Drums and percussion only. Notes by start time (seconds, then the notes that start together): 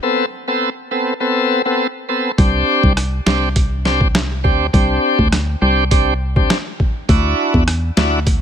2.38 kick, closed hi-hat
2.84 kick
2.97 cross-stick, closed hi-hat
3.27 snare
3.56 kick, closed hi-hat
3.85 snare
4.01 kick
4.15 cross-stick, snare, closed hi-hat
4.45 kick
4.74 kick, closed hi-hat
5.19 kick
5.32 cross-stick, snare, closed hi-hat
5.91 kick, closed hi-hat
6.36 kick
6.50 cross-stick, snare, closed hi-hat
6.80 kick
7.09 kick, closed hi-hat
7.54 kick
7.68 cross-stick, closed hi-hat
7.97 snare
8.27 kick, closed hi-hat